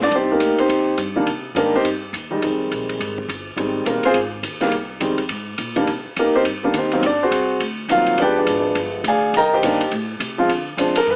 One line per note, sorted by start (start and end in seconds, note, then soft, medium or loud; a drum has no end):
0.00 0.11 A#1 medium
0.00 0.14 D4 medium
0.00 0.13 D5 loud
0.00 snare soft
0.11 0.40 C2 medium
0.11 0.30 G4 medium
0.11 0.31 C5 medium
0.11 ride medium
0.16 0.31 C4 medium
0.16 0.31 D#4 medium
0.32 0.58 A#3 medium
0.32 0.58 D#4 medium
0.32 0.58 G4 medium
0.32 0.58 A#4 medium
0.40 0.57 D2 medium
0.40 hi-hat pedal medium
0.40 ride medium
0.58 0.97 C4 medium
0.58 0.97 D#4 medium
0.58 0.97 G4 medium
0.58 0.96 C5 medium
0.58 muted upright bass stroke soft
0.58 ride soft
0.69 0.97 D#2 medium
0.69 ride medium
0.98 1.26 G2 medium
0.98 hi-hat pedal medium
0.98 ride medium
1.15 1.26 D#3 medium
1.15 1.26 G3 medium
1.15 1.26 A#3 medium
1.15 1.27 D4 medium
1.26 1.54 C3 medium
1.26 ride medium
1.55 1.84 G#2 medium
1.55 1.72 D#3 medium
1.55 1.72 G3 medium
1.55 1.72 A#3 medium
1.55 1.72 D4 medium
1.55 1.74 D#4 medium
1.55 1.74 G4 medium
1.55 1.74 A#4 medium
1.55 hi-hat pedal medium
1.55 ride medium
1.75 1.86 C4 medium
1.75 1.86 D#4 medium
1.75 1.86 G4 medium
1.75 1.86 C5 loud
1.84 2.12 G2 medium
1.84 ride medium
2.13 2.41 D#2 medium
2.13 hi-hat pedal soft
2.13 ride medium
2.31 2.41 D#3 medium
2.31 2.41 G3 medium
2.31 2.42 G#3 medium
2.31 2.42 D#4 medium
2.42 2.70 F2 medium
2.42 3.22 D#3 medium
2.42 3.22 G3 soft
2.42 3.22 G#3 medium
2.42 3.23 C4 medium
2.42 ride medium
2.71 2.99 A#1 medium
2.71 hi-hat pedal soft
2.71 ride medium
2.89 ride soft
3.00 3.28 G#1 medium
3.00 ride medium
3.18 kick medium
3.28 3.56 G1 medium
3.28 hi-hat pedal soft
3.28 ride medium
3.57 3.85 G#1 medium
3.57 4.00 D#3 medium
3.57 4.00 G3 medium
3.57 4.01 G#3 medium
3.57 4.01 C4 medium
3.57 ride medium
3.85 4.02 A#1 loud
3.85 4.04 A#3 medium
3.85 4.04 A#4 medium
3.85 hi-hat pedal medium
3.85 ride medium
4.03 4.16 C4 medium
4.03 4.16 F4 medium
4.03 4.16 G#4 medium
4.03 4.16 C5 loud
4.03 muted upright bass stroke soft
4.03 ride soft
4.14 4.43 G#1 medium
4.14 ride medium
4.43 4.71 D#2 medium
4.43 hi-hat pedal medium
4.43 ride medium
4.61 4.71 D#3 medium
4.61 4.71 G3 medium
4.61 4.72 G#3 medium
4.61 4.72 A#3 medium
4.61 snare soft
4.61 ride soft
4.71 5.00 C2 medium
4.71 ride medium
5.00 5.29 F2 medium
5.00 5.17 D#3 medium
5.00 5.17 G3 medium
5.00 5.17 G#3 medium
5.00 5.17 C4 medium
5.00 hi-hat pedal medium
5.00 ride medium
5.18 ride soft
5.29 5.58 G#2 medium
5.29 ride medium
5.58 5.87 A#2 medium
5.58 hi-hat pedal soft
5.58 ride medium
5.76 5.86 D#3 medium
5.76 5.87 G3 medium
5.76 5.87 A#3 medium
5.76 5.87 D4 medium
5.76 ride soft
5.87 6.04 C3 medium
5.87 ride medium
6.06 muted upright bass stroke soft
6.16 6.45 F2 medium
6.16 6.36 A#3 medium
6.16 6.34 D#4 medium
6.16 6.34 G4 medium
6.16 6.35 A#4 medium
6.16 hi-hat pedal soft
6.16 ride medium
6.35 6.42 C4 medium
6.35 6.42 D#4 medium
6.35 6.42 G4 medium
6.35 6.42 C5 loud
6.45 6.74 G2 medium
6.45 ride medium
6.63 6.73 D#3 medium
6.63 6.74 G3 medium
6.63 6.74 A#3 medium
6.63 6.74 D4 medium
6.74 7.02 D#2 loud
6.74 6.92 C4 medium
6.74 hi-hat pedal medium
6.74 ride medium
6.78 7.03 D#4 medium
6.78 7.03 G4 medium
6.78 7.03 C5 medium
6.91 7.02 D#3 medium
6.91 7.03 F#3 medium
6.91 7.03 A#3 medium
6.91 7.03 C4 medium
6.91 ride soft
7.03 7.31 G#1 medium
7.03 7.22 D4 medium
7.03 7.22 D5 medium
7.03 ride medium
7.23 7.60 C4 medium
7.23 7.60 F#4 medium
7.23 7.59 G#4 medium
7.23 7.59 C5 medium
7.31 7.59 C2 medium
7.31 hi-hat pedal medium
7.31 ride medium
7.60 7.88 D2 medium
7.60 ride medium
7.88 8.17 C2 loud
7.88 8.19 D#3 medium
7.88 8.19 F#3 medium
7.88 8.19 A#3 medium
7.88 8.19 C4 medium
7.88 8.18 F4 medium
7.88 8.18 F5 medium
7.88 hi-hat pedal medium
7.88 ride medium
8.06 ride soft
8.18 8.46 G1 medium
8.18 8.99 F3 medium
8.18 8.99 G#3 medium
8.18 8.99 B3 medium
8.18 8.38 D4 medium
8.18 8.37 G5 medium
8.18 ride medium
8.22 8.38 G4 medium
8.22 8.38 B4 medium
8.22 8.37 D5 medium
8.39 8.75 D4 medium
8.39 8.75 G#4 medium
8.39 8.75 B4 soft
8.39 8.75 D5 medium
8.46 8.75 G#1 medium
8.46 hi-hat pedal soft
8.46 ride medium
8.75 9.03 G1 loud
8.75 ride medium
9.04 9.33 D2 loud
9.04 9.34 F5 medium
9.04 hi-hat pedal medium
9.04 ride medium
9.08 9.34 G#4 medium
9.08 9.34 D5 medium
9.08 9.34 G#5 medium
9.34 9.62 C2 medium
9.34 9.52 G5 medium
9.34 9.53 A#5 loud
9.34 ride medium
9.38 9.53 A#4 medium
9.38 9.52 D#5 medium
9.54 9.90 G4 medium
9.54 9.91 C5 medium
9.54 9.90 D#5 medium
9.54 9.90 G5 medium
9.63 9.91 G2 medium
9.63 9.79 D#3 medium
9.63 9.79 G3 medium
9.63 9.80 A#3 medium
9.63 9.80 D4 medium
9.63 hi-hat pedal medium
9.63 ride medium
9.81 ride medium
9.91 10.19 A2 loud
9.91 ride medium
10.20 10.48 C3 loud
10.20 hi-hat pedal medium
10.20 ride medium
10.38 10.49 F3 medium
10.38 10.49 G#3 medium
10.38 10.49 C4 medium
10.38 10.49 F4 medium
10.49 10.77 D3 medium
10.49 ride medium
10.77 10.94 C3 medium
10.77 10.94 F3 medium
10.77 10.94 G#3 medium
10.77 10.94 C4 medium
10.77 10.95 D4 medium
10.77 10.97 C5 medium
10.77 hi-hat pedal medium
10.77 ride medium
10.96 11.08 A#4 medium
10.96 muted upright bass stroke soft
10.96 ride medium
11.07 11.16 G2 loud
11.07 11.16 B4 medium